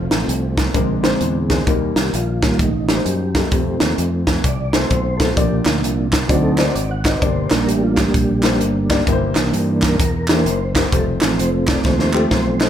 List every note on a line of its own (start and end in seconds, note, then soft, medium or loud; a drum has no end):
0.00 0.71 F3 medium
0.00 0.52 A3 medium
0.00 0.71 A3 soft
0.00 0.52 C4 medium
0.00 0.71 C4 medium
0.00 0.52 F4 medium
0.00 0.52 C5 medium
0.11 0.26 A1 medium
0.11 snare loud
0.11 closed hi-hat medium
0.28 0.67 C2 loud
0.28 closed hi-hat medium
0.58 kick medium
0.58 snare loud
0.58 closed hi-hat medium
0.74 1.14 A#1 medium
0.74 1.46 A#2 medium
0.74 1.62 D3 medium
0.74 0.98 G#3 medium
0.74 1.63 G#3 soft
0.74 0.98 C4 medium
0.74 1.63 C4 medium
0.74 0.98 D4 medium
0.74 0.98 A#4 medium
0.74 kick loud
0.74 closed hi-hat medium
1.03 1.32 G#3 medium
1.03 1.32 C4 medium
1.03 1.32 D4 medium
1.03 1.32 C5 loud
1.03 snare loud
1.03 closed hi-hat medium
1.21 1.60 E2 medium
1.21 closed hi-hat medium
1.49 1.61 G#3 medium
1.49 1.61 C4 medium
1.49 1.61 D4 medium
1.49 1.61 G#4 medium
1.49 kick medium
1.49 snare medium
1.49 closed hi-hat medium
1.66 1.92 D#2 loud
1.66 2.38 D#3 medium
1.66 1.74 F#3 medium
1.66 2.36 A#3 medium
1.66 2.36 D#4 medium
1.66 2.36 A#4 medium
1.66 kick loud
1.66 closed hi-hat medium
1.72 2.39 G3 medium
1.96 2.10 C2 medium
1.96 2.14 G4 loud
1.96 snare loud
1.96 closed hi-hat medium
2.14 2.53 A#1 medium
2.14 2.61 F4 medium
2.14 closed hi-hat medium
2.42 2.69 D#3 medium
2.42 2.70 G3 soft
2.42 2.70 A#3 medium
2.42 kick medium
2.42 snare loud
2.42 closed hi-hat medium
2.59 2.99 A1 medium
2.59 3.02 D#4 medium
2.59 kick loud
2.59 closed hi-hat medium
2.89 3.17 G3 medium
2.89 3.17 A#3 medium
2.89 3.17 D#4 medium
2.89 2.93 A#4 medium
2.89 snare loud
2.89 closed hi-hat medium
2.94 3.20 C5 medium
3.06 3.45 F#2 medium
3.06 3.78 G4 medium
3.06 closed hi-hat medium
3.35 3.47 G3 medium
3.35 3.47 A#3 medium
3.35 3.47 D#4 medium
3.35 3.47 A4 medium
3.35 kick medium
3.35 snare loud
3.35 closed hi-hat medium
3.51 3.77 F2 medium
3.51 4.27 F3 medium
3.51 3.59 G3 medium
3.51 4.27 A3 soft
3.51 4.22 C4 medium
3.51 4.27 C4 medium
3.51 4.22 F4 medium
3.51 4.22 C5 medium
3.51 kick loud
3.51 closed hi-hat medium
3.58 4.25 A3 medium
3.80 3.95 D#2 medium
3.80 snare loud
3.80 closed hi-hat medium
3.98 4.37 F2 medium
3.98 closed hi-hat medium
4.27 4.43 F3 soft
4.27 4.43 A3 soft
4.27 4.43 C4 soft
4.27 kick medium
4.27 snare loud
4.27 closed hi-hat medium
4.44 4.84 C2 medium
4.44 4.75 D5 loud
4.44 kick loud
4.44 closed hi-hat loud
4.72 5.02 A3 medium
4.72 5.02 C4 medium
4.72 5.02 F4 medium
4.72 5.02 A4 medium
4.72 5.21 C5 loud
4.72 snare loud
4.72 closed hi-hat medium
4.90 5.30 B1 medium
4.90 kick medium
4.90 closed hi-hat medium
5.17 5.32 A3 medium
5.17 5.32 C4 medium
5.17 5.32 F4 medium
5.17 5.34 A4 medium
5.17 5.32 C5 medium
5.17 kick medium
5.17 snare medium
5.17 closed hi-hat medium
5.35 5.62 A#1 medium
5.35 6.09 A#2 medium
5.35 6.08 F3 medium
5.35 6.08 A#3 medium
5.35 6.07 A#3 medium
5.35 6.09 D4 medium
5.35 6.07 D4 medium
5.35 6.07 F4 medium
5.35 5.63 G4 medium
5.35 6.07 D5 medium
5.35 kick loud
5.35 closed hi-hat medium
5.65 5.83 D2 medium
5.65 snare loud
5.65 clap medium
5.65 closed hi-hat medium
5.83 6.22 C2 medium
5.83 closed hi-hat medium
6.13 kick medium
6.13 snare loud
6.13 clap medium
6.13 closed hi-hat medium
6.28 6.69 D2 loud
6.28 7.01 D3 medium
6.28 6.63 F#3 medium
6.28 6.64 C4 soft
6.28 6.53 C4 medium
6.28 6.53 D#4 medium
6.28 6.64 D#4 medium
6.28 6.36 F#4 medium
6.28 6.53 F#4 medium
6.28 6.53 D5 medium
6.28 kick loud
6.28 closed hi-hat loud
6.43 6.60 A4 medium
6.58 6.87 C4 medium
6.58 6.88 D#4 medium
6.58 6.63 F4 medium
6.58 6.76 C5 medium
6.58 6.87 D5 medium
6.58 snare loud
6.58 clap loud
6.58 closed hi-hat medium
6.64 6.90 F#4 medium
6.75 7.15 G#1 medium
6.75 6.90 D5 medium
6.75 closed hi-hat medium
6.91 7.07 F#5 loud
7.05 7.17 C4 medium
7.05 7.17 D#4 medium
7.05 7.17 F#4 medium
7.05 7.18 D5 medium
7.05 7.17 D#5 medium
7.05 7.10 F#5 medium
7.05 kick medium
7.05 snare loud
7.05 clap loud
7.05 closed hi-hat medium
7.17 7.22 B4 medium
7.22 7.47 G1 loud
7.22 7.94 G2 medium
7.22 7.92 A#3 medium
7.22 7.92 D4 medium
7.22 7.92 G4 medium
7.22 7.52 C5 loud
7.22 7.92 D5 medium
7.22 kick loud
7.22 closed hi-hat medium
7.50 7.66 A#1 medium
7.50 9.03 G3 medium
7.50 9.03 A#3 soft
7.50 9.03 D4 medium
7.50 7.69 A#4 medium
7.50 snare loud
7.50 clap medium
7.50 closed hi-hat medium
7.68 8.08 A1 medium
7.68 7.83 G4 medium
7.68 closed hi-hat medium
7.84 8.00 F4 medium
7.97 8.67 G4 medium
7.97 kick medium
7.97 snare loud
7.97 clap medium
7.97 closed hi-hat medium
8.14 8.61 A#1 medium
8.14 kick loud
8.14 closed hi-hat medium
8.43 8.73 A#3 medium
8.43 8.73 D4 medium
8.43 8.73 G4 medium
8.43 8.73 C5 medium
8.43 snare loud
8.43 clap loud
8.43 closed hi-hat medium
8.61 9.00 G1 loud
8.61 closed hi-hat medium
8.90 9.02 A#3 medium
8.90 9.02 D4 medium
8.90 9.02 G4 medium
8.90 9.02 D5 medium
8.90 kick medium
8.90 snare loud
8.90 clap loud
8.90 closed hi-hat medium
9.07 9.32 G1 loud
9.07 9.79 G2 medium
9.07 9.77 A#3 medium
9.07 9.77 E4 medium
9.07 9.77 G4 medium
9.07 9.14 A#4 medium
9.07 kick loud
9.07 closed hi-hat medium
9.12 9.80 C5 loud
9.35 9.51 C2 medium
9.35 9.96 E3 soft
9.35 9.97 A#3 soft
9.35 9.97 D4 medium
9.35 snare loud
9.35 clap medium
9.35 closed hi-hat medium
9.53 10.00 G2 medium
9.53 closed hi-hat medium
9.82 9.99 A#4 loud
9.82 kick medium
9.82 snare loud
9.82 clap loud
9.82 closed hi-hat medium
9.99 10.47 E2 medium
9.99 10.27 A#4 medium
9.99 kick loud
9.99 closed hi-hat loud
10.28 10.44 E3 soft
10.28 10.58 A#3 medium
10.28 10.45 A#3 soft
10.28 10.45 D4 medium
10.28 10.58 E4 medium
10.28 10.58 G4 medium
10.28 10.33 A4 medium
10.28 10.73 C5 loud
10.28 snare loud
10.28 clap loud
10.28 closed hi-hat medium
10.35 10.60 A#4 medium
10.46 10.85 F#1 loud
10.46 closed hi-hat medium
10.75 10.87 A#3 medium
10.75 10.87 E4 medium
10.75 10.87 G4 medium
10.75 10.87 A#4 medium
10.75 10.87 C5 medium
10.75 kick medium
10.75 snare loud
10.75 clap loud
10.75 closed hi-hat medium
10.88 10.92 C5 medium
10.92 11.17 F1 loud
10.92 10.99 G3 medium
10.92 11.62 C4 medium
10.92 11.62 F4 medium
10.92 11.06 A4 medium
10.92 11.62 C5 medium
10.92 kick loud
10.92 closed hi-hat medium
10.98 11.65 A3 medium
11.20 11.36 A1 medium
11.20 12.70 F3 medium
11.20 12.70 A3 soft
11.20 12.70 C4 medium
11.20 snare loud
11.20 clap medium
11.20 closed hi-hat medium
11.38 11.78 F1 loud
11.38 11.51 C5 medium
11.38 closed hi-hat medium
11.68 11.84 D5 loud
11.68 kick medium
11.68 snare loud
11.68 clap medium
11.68 closed hi-hat medium
11.84 12.24 D#2 loud
11.84 12.15 C5 loud
11.84 kick loud
11.84 snare medium
11.99 snare medium
12.13 12.43 A3 medium
12.13 12.43 C4 medium
12.13 12.43 F4 medium
12.13 12.43 G4 medium
12.13 12.31 A4 loud
12.13 clap loud
12.31 12.70 B1 loud
12.31 12.70 C5 medium
12.31 kick medium
12.31 snare medium
12.60 12.70 A3 medium
12.60 12.70 C4 medium
12.60 12.70 F4 medium
12.60 12.70 D#5 medium
12.60 snare loud
12.60 clap loud